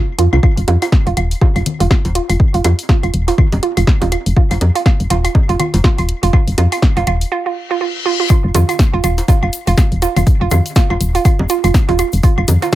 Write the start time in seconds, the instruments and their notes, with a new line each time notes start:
0.18 fm bass F2, synth arpeggio sound F4, closed hi-hat
0.33 fm bass C2, synth arpeggio sound F4, cowbell, claves
0.43 synth arpeggio sound F4, kick, claves
0.57 fm bass F1, closed hi-hat
0.68 fm bass F2, synth arpeggio sound F4, closed hi-hat, high bongo
0.82 synth arpeggio sound F4, closed hi-hat, cowbell, claves
0.92 kick, snare
1.06 fm bass F1, synth arpeggio sound F4, closed hi-hat
1.17 fm bass D#1, synth arpeggio sound F4, closed hi-hat, claves
1.31 closed hi-hat
1.41 synth arpeggio sound F4, kick, cowbell, high bongo
1.56 fm bass F1, synth arpeggio sound F4, closed hi-hat, claves
1.66 closed hi-hat, low conga
1.80 fm bass F1, synth arpeggio sound F4, closed hi-hat
1.91 synth arpeggio sound F4, kick, snare, claves
2.05 fm bass D#1, closed hi-hat, cowbell
2.15 synth arpeggio sound F4, closed hi-hat
2.29 fm bass F1, synth arpeggio sound F4, closed hi-hat, claves
2.40 kick
2.54 fm bass F1, synth arpeggio sound F4, closed hi-hat
2.64 fm bass F2, synth arpeggio sound F4, closed hi-hat, cowbell, high bongo, claves
2.79 closed hi-hat
2.89 synth arpeggio sound F4, kick, snare
3.03 fm bass F1, synth arpeggio sound F4, closed hi-hat, claves
3.14 fm bass D#1, closed hi-hat
3.28 synth arpeggio sound F4, closed hi-hat, cowbell
3.38 synth arpeggio sound F4, kick, low conga, claves
3.52 fm bass F1, closed hi-hat, high bongo
3.63 synth arpeggio sound F4, closed hi-hat
3.77 fm bass F1, synth arpeggio sound F4, closed hi-hat, claves
3.87 kick, snare, cowbell
4.02 fm bass D#1, synth arpeggio sound F4, closed hi-hat, high bongo
4.12 synth arpeggio sound F4, closed hi-hat, claves
4.26 fm bass F1, closed hi-hat
4.37 synth arpeggio sound F4, kick
4.51 fm bass F1, synth arpeggio sound F4, closed hi-hat, cowbell, claves
4.61 fm bass F2, closed hi-hat, high bongo
4.75 synth arpeggio sound F4, closed hi-hat
4.86 synth arpeggio sound F4, kick, snare, claves
5.00 fm bass F1, closed hi-hat
5.10 fm bass D#1, synth arpeggio sound F4, closed hi-hat, cowbell
5.24 synth arpeggio sound F4, closed hi-hat, claves
5.35 kick, high bongo
5.49 fm bass F1, synth arpeggio sound F4, closed hi-hat
5.59 synth arpeggio sound F4, closed hi-hat, low conga, claves
5.74 fm bass F1, closed hi-hat, cowbell
5.84 synth arpeggio sound F4, kick, snare
5.98 fm bass D#1, synth arpeggio sound F4, closed hi-hat, claves
6.09 closed hi-hat
6.23 fm bass F1, synth arpeggio sound F4, closed hi-hat
6.33 synth arpeggio sound F4, kick, cowbell, claves
6.47 fm bass F1, closed hi-hat
6.58 fm bass F2, synth arpeggio sound F4, closed hi-hat, high bongo
6.72 synth arpeggio sound F4, closed hi-hat, claves
6.82 kick, snare
6.97 fm bass F1, synth arpeggio sound F4, closed hi-hat, cowbell
7.07 fm bass D#1, synth arpeggio sound F4, closed hi-hat, claves
7.21 closed hi-hat
7.32 synth arpeggio sound F4, reverse cymbal
7.46 synth arpeggio sound F4
7.71 synth arpeggio sound F4
7.81 synth arpeggio sound F4
8.06 synth arpeggio sound F4
8.20 synth arpeggio sound F4
8.30 synth arpeggio sound F4, kick, closed hi-hat, cowbell, claves, shaker
8.44 fm bass F1
8.55 fm bass F2, synth arpeggio sound F4, closed hi-hat, high bongo, low conga, shaker
8.69 synth arpeggio sound F4, closed hi-hat, claves, shaker
8.79 kick, snare, closed hi-hat, shaker
8.93 fm bass F1, synth arpeggio sound F4
9.04 fm bass D#1, synth arpeggio sound F4, closed hi-hat, claves, shaker
9.18 closed hi-hat, cowbell, shaker
9.28 synth arpeggio sound F4, kick, closed hi-hat, high bongo, shaker
9.43 fm bass F1, synth arpeggio sound F4, claves
9.53 closed hi-hat, shaker
9.67 fm bass F1, synth arpeggio sound F4, closed hi-hat, shaker
9.77 synth arpeggio sound F4, kick, snare, closed hi-hat, claves, shaker
9.92 fm bass D#1, closed hi-hat
10.02 synth arpeggio sound F4, closed hi-hat, cowbell, shaker
10.16 fm bass F1, synth arpeggio sound F4, closed hi-hat, low conga, claves, shaker
10.27 kick, closed hi-hat, shaker
10.41 fm bass F1, synth arpeggio sound F4
10.51 fm bass F2, synth arpeggio sound F4, closed hi-hat, high bongo, low conga, claves, shaker
10.66 closed hi-hat, shaker
10.76 synth arpeggio sound F4, kick, snare, closed hi-hat, shaker
10.90 fm bass F1, synth arpeggio sound F4, cowbell, claves
11.00 fm bass D#1, closed hi-hat, shaker
11.15 synth arpeggio sound F4, closed hi-hat, shaker
11.25 synth arpeggio sound F4, kick, closed hi-hat, claves, shaker
11.39 fm bass F1, high bongo
11.49 synth arpeggio sound F4, closed hi-hat, shaker
11.64 fm bass F1, synth arpeggio sound F4, closed hi-hat, claves, shaker
11.74 kick, snare, closed hi-hat, cowbell, shaker
11.89 fm bass D#1, synth arpeggio sound F4, closed hi-hat, high bongo
11.99 synth arpeggio sound F4, closed hi-hat, claves, shaker
12.12 fm bass F1, closed hi-hat, shaker
12.23 synth arpeggio sound F4, kick, closed hi-hat, shaker
12.38 fm bass F1, synth arpeggio sound F4, claves
12.48 fm bass F2, closed hi-hat, high bongo, low conga, shaker
12.62 synth arpeggio sound F4, closed hi-hat, cowbell, shaker